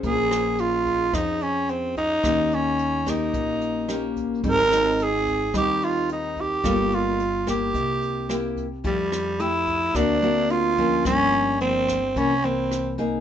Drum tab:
HH |xxxxxxxx|xxxxxxxx|xxxxxxxx|xxxxxxxx|
SD |-r--r---|r--r--r-|-r--r---|r--r--r-|
BD |o--oo--o|o--oo--o|o--oo--o|o--oo--o|

HH |xxxxxxxx|xxxxxxxx|
SD |-r--r---|r--r--r-|
BD |o--oo--o|o--oo--o|